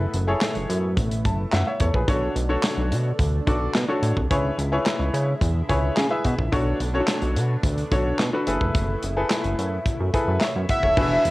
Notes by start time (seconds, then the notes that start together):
Already playing: A2 A3 B3 E4 G#4 A4 B4
0.14 F#1, closed hi-hat
0.27 E4 G#4 A4 C#5
0.41 snare, clap, closed hi-hat
0.55 F#1, closed hi-hat
0.69 F#2, closed hi-hat
0.97 A1, kick, closed hi-hat
1.11 closed hi-hat
1.25 F#1 A5, kick, closed hi-hat
1.52 F#2 E5 F#5, snare, clap, closed hi-hat
1.67 C#5 E5
1.80 E2 A4 C#5, kick, closed hi-hat
1.94 A#1 G#4 B4, kick
2.08 B1 D3 A3 D4 F#4 A4 C#5, kick, closed hi-hat
2.36 B1, closed hi-hat
2.49 D4 F#4 A4 C#5
2.63 snare, clap, closed hi-hat
2.77 B1
2.92 B2, closed hi-hat
3.19 D2, kick, closed hi-hat
3.47 B1 D4 F#4 A4 D5, kick, closed hi-hat
3.75 B2, snare, clap, closed hi-hat
3.88 D4 F#4 A4 C#5
4.02 A2, closed hi-hat
4.17 C2, kick
4.30 C#2 G#3 E4 G#4 B4 C#5, kick, closed hi-hat
4.58 C#2, closed hi-hat
4.72 E4 G#4 B4 C#5
4.86 snare, clap, closed hi-hat
5.00 C#2
5.14 C#3, closed hi-hat
5.41 E2, kick, closed hi-hat
5.69 C#2 E4 G#4 B4 C#5, kick, closed hi-hat
5.97 C#3 G#5, snare, clap, closed hi-hat
6.10 E4 G#4 B4 E5
6.25 B2 E5, kick, closed hi-hat
6.39 A#1, kick
6.52 B1 D3 A3 B3 D4 F#4 A4 C#5, kick, closed hi-hat
6.80 B1, closed hi-hat
6.94 C#4 F#4 A4 C#5
7.00 D4
7.08 snare, clap, closed hi-hat
7.22 B1, closed hi-hat
7.36 B2, closed hi-hat
7.63 D2, kick, closed hi-hat
7.78 closed hi-hat
7.91 B1 D4 F#4 A4 C#5, kick, closed hi-hat
8.19 B2, snare, clap, closed hi-hat
8.33 D4 F#4 A4 B4
8.47 F#1 A2 A3 E4 G#4 A4 B4, closed hi-hat
8.61 F1, kick
8.75 F#1, kick, closed hi-hat
9.02 F#1, closed hi-hat
9.16 E4 G#4 A4 B4
9.30 snare, clap, closed hi-hat
9.44 F#1, closed hi-hat
9.58 F#2, closed hi-hat
9.86 kick, closed hi-hat
10.00 F#2
10.14 E4 G#4 A4 B4, kick, closed hi-hat
10.28 F#2
10.41 C#5 E5, snare, clap, closed hi-hat
10.55 F#2
10.69 E5 F#5, kick, closed hi-hat
10.83 D#1 A4 C#5, kick
10.97 E1 D3 F#3 G#3 D4 E4 F#4 G#4 B4, kick, crash
11.25 E1, closed hi-hat